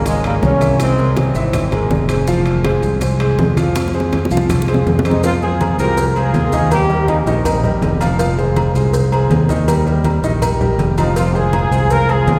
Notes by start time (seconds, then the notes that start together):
Already playing: G#1
0.05 F3 G#3 G#4 A#4, high bongo, high conga, high timbale, maracas
0.24 G3 G#3 A#3 G#4 A#4, high conga, high timbale, maracas
0.42 C2 A#3 C#4, high bongo, low bongo, high conga, low timbale, maracas
0.61 E3 E4 E5, high conga, high timbale, maracas
0.80 G#3 C4, high bongo, high conga, high timbale, maracas
0.98 G#3 G#4 A#4, high bongo, high conga, maracas
1.17 G#3 C4, high bongo, high conga, high timbale, low timbale, maracas
1.35 G#1 E3 E4 E5, maracas
1.53 high bongo, high conga, low conga, high timbale, maracas
1.72 G#3 G#4 A#4, high bongo, high conga, low conga, high timbale, maracas
1.90 F1, high bongo, low bongo, high conga, low timbale, maracas
2.09 G#3 G#4 C5, high bongo, high timbale, maracas
2.27 F3 F4 F5, high bongo, high conga, maracas
2.46 high conga, high timbale, maracas
2.64 G#3 G#4 C5, high bongo, high conga, high timbale, low timbale, maracas
2.83 C2, high conga, maracas
3.01 G#3 G#4 C5, high bongo, high conga, high timbale, maracas
3.20 G#3 G#4 C5, high conga, high timbale, maracas
3.38 F2, high bongo, low bongo, high conga, low timbale, maracas
3.57 F3 F4 F5, high conga, high timbale, maracas
3.75 high bongo, high conga, high timbale, maracas
3.88 high bongo
3.93 G#3 G#4 C5, high conga, maracas
4.00 high bongo
4.12 low bongo, high conga, high timbale, low timbale, maracas
4.25 high bongo
4.31 C2 F3 F4 F5, maracas
4.37 low bongo
4.49 low bongo, high conga, low conga, high timbale, maracas
4.62 low bongo
4.68 G#3 G#4 C5, high conga, high timbale, maracas
4.74 low bongo
4.86 F2, low bongo, high conga, low timbale, maracas
4.99 low bongo
5.05 G#3 C4 D#4 G#4 C5, high timbale, maracas
5.11 low bongo
5.23 F3 C4 F4 F5, cowbell, high conga, low agogo, maracas
5.42 G#3 F4 G#4 C5, high conga, maracas
5.61 cowbell, high conga, low timbale, low agogo, maracas
5.78 C2 G#3 F4 G4 A#4 C5, high conga, low agogo, maracas
5.97 cowbell, high conga, maracas
6.09 A#4
6.16 G#3 F4 G#4 C5, high conga, low agogo, maracas
6.33 D#2, cowbell, high conga, low timbale, low agogo, maracas
6.52 D#3 D#4 D#5, cowbell, high conga, maracas
6.71 G3 D#4 G4 A#4, cowbell, high conga, low agogo, maracas
6.90 G3 G4 A#4, high conga, maracas
7.08 A#3 D#4, cowbell, high conga, low timbale, low agogo, maracas
7.26 A#1 D#3 C4 D#4 D#5, cowbell, maracas
7.45 G3 G4 A#4, cowbell, high conga, low conga, low agogo, maracas
7.63 G3 G4 A#4, high conga, low conga, maracas
7.82 F1, cowbell, high conga, low timbale, low agogo, maracas
8.01 F3 F4 F5, cowbell, low agogo, maracas
8.19 F3 F4 F5, cowbell, high conga, low agogo, maracas
8.38 G#3 G#4 C5, high conga, maracas
8.56 cowbell, high conga, low timbale, low agogo, maracas
8.75 C2 G#3 G#4 C5, high conga, low agogo, maracas
8.93 cowbell, high conga, maracas
9.12 G#3 G#4 C5, high conga, low agogo, maracas
9.30 D#2, cowbell, high conga, low timbale, low agogo, maracas
9.49 D#3 D#4 D#5, cowbell, high conga, maracas
9.68 G3 G4 A#4, cowbell, high conga, low agogo, maracas
9.86 G3 G4 A#4, high conga, maracas
10.04 cowbell, high conga, low timbale, low agogo, maracas
10.23 A#1 D#3 D#4 D#5, cowbell, maracas
10.42 G3 G4 A#4, cowbell, high conga, low conga, low agogo, maracas
10.61 G3 G4 A#4, high conga, low conga, maracas
10.78 F1, cowbell, high conga, low timbale, low agogo, maracas
10.98 F3 C4 D#4 F4 F5, cowbell, low agogo, maracas
11.16 F3 C4 F4 F5, cowbell, high conga, low agogo, maracas
11.34 G#3 F4 G#4 C5, high conga, maracas
11.53 cowbell, high conga, low timbale, low agogo, maracas
11.71 C2 G#3 G#4 C5, high conga, low agogo, maracas
11.90 F4 A#4, cowbell, high conga, maracas
12.09 G#3 F4 G#4 C5, high conga, low agogo, maracas
12.27 D#2, cowbell, high conga, low timbale, low agogo, maracas